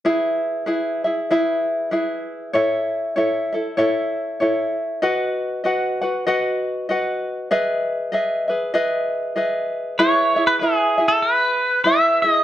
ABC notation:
X:1
M:4/4
L:1/16
Q:"Swing" 1/4=97
K:E
V:1 name="Pedal steel guitar"
z16 | z16 | z16 | z16 |
c3 B G3 A B4 e2 d2 |]
V:2 name="Ukulele"
[EGBe]4 [EGBe]2 [EGe]2 [EGBe]4 [EGBe]4 | [EAce]4 [EAce]2 [EAe]2 [EAce]4 [EAce]4 | [FBdf]4 [FBdf]2 [FBf]2 [FBdf]4 [FBdf]4 | [GBde]4 [GBde]2 [GBe]2 [GBde]4 [GBde]4 |
[EGBe]2 [EGe]2 [EGBe]2 [EGe]6 [EGBe]2 [EG]2 |]